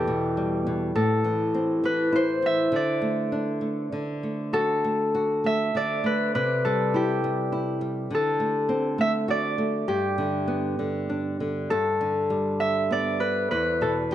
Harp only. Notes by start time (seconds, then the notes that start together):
Already playing: G4 A4 B4 D5
0.96 A4
1.85 B4
2.16 C5
2.46 E5
2.76 D5
4.53 A4
5.46 E5
5.77 D5
6.06 B4
6.35 B4
6.65 A4
6.96 G4
8.15 A4
9.01 E5
9.30 D5
9.88 G4
11.70 A4
12.60 E5
12.92 D5
13.20 B4
13.51 B4
13.82 A4